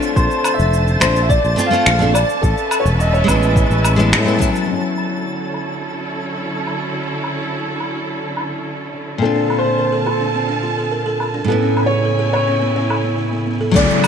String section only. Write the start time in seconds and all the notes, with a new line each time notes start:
Already playing: D3 C#5 E5 F#5
0.16 C5 A5
2.42 C#4 B4 E5
4.69 D3 F#3 C#4 E4 A4
9.22 C4 F4 A5
11.49 C#3 B3 E4 G#5
13.75 C#3 F#3 E4 F#4